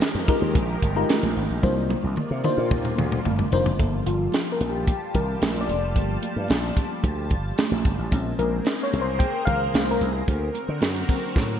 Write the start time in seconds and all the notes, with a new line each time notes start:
Already playing: D#3 F3 G#3 G4 A#4
0.00 muted slap bass stroke, snare, closed hi-hat, high conga
0.15 F2, closed hi-hat
0.28 G#3 D#4 F4 G4 A#4, kick, closed hi-hat, muted conga
0.42 D#2
0.55 A#1, kick, closed hi-hat, muted conga
0.82 G1, kick, closed hi-hat
0.96 G#3 D#4 F4 G4 A#4
1.09 snare, closed hi-hat, high conga
1.22 A#1, closed hi-hat, high conga
1.36 G#1, open hi-hat, high conga
1.50 A#1
1.63 C2 C3 A#3 D4 D#4 F4 C5 D5, kick, high tom, muted conga
1.90 high tom, muted conga
2.04 C2
2.16 muted slap bass stroke, mid tom, high conga
2.31 C3
2.44 A#3 D4 D#4 F4 C5, mid tom, muted conga
2.58 A#2
2.71 D#2, kick, mid tom, muted conga
2.85 mid tom
2.98 D2, mid tom, low conga
3.12 mid tom
3.25 G1, floor tom, high conga
3.38 floor tom, high conga
3.52 F1 A#3 D4 D#4 F4 C5, floor tom
3.66 floor tom
3.79 G1 F3 G3 A#3 F4 G4 A4 A5, kick, closed hi-hat, muted conga
4.06 G1 F4, closed hi-hat, muted conga
4.32 snare, closed hi-hat, high conga
4.52 A#4
4.61 A#1, closed hi-hat, muted conga
4.70 G4
4.87 G4, kick, closed hi-hat, muted conga
5.14 C2 A#4, kick, closed hi-hat, low conga
5.42 A#1, snare, closed hi-hat, high conga
5.55 closed hi-hat, high conga
5.61 D5
5.69 F1, closed hi-hat, high conga
5.95 G1 F3 A3 A#3, kick, closed hi-hat, muted conga
6.23 closed hi-hat, muted conga
6.36 G2
6.48 A#1, snare, closed hi-hat, high conga
6.64 closed hi-hat
6.77 kick, closed hi-hat
7.04 D2, kick, closed hi-hat, muted conga
7.31 G1, kick, closed hi-hat
7.58 snare, closed hi-hat, high conga
7.71 A#1, high conga
7.85 G1, kick, closed hi-hat, high conga
7.98 A1
8.11 A#1 G#3 A#3 C4 C#4 G#4 A#4 C5, kick, closed hi-hat, muted conga
8.39 A#1 A#4, closed hi-hat, muted conga
8.65 snare, closed hi-hat, high conga
8.80 C#5, closed hi-hat
8.93 C2 C#3 G#3 C4, closed hi-hat
9.01 C5
9.19 G5, kick, closed hi-hat, muted conga
9.45 C#2 F5, kick, closed hi-hat, low conga
9.74 C2, snare, closed hi-hat, high conga
9.84 C5, high conga
9.91 A#4
10.00 C2, closed hi-hat, high conga
10.28 D2 D3 C4 F#4 A#4, kick, closed hi-hat, muted conga
10.55 closed hi-hat, muted conga
10.69 D3
10.81 F#2, snare, closed hi-hat, high conga
10.96 closed hi-hat
11.08 F#3 A#3 C4, kick, open hi-hat, muted conga
11.36 A2, kick, snare, muted conga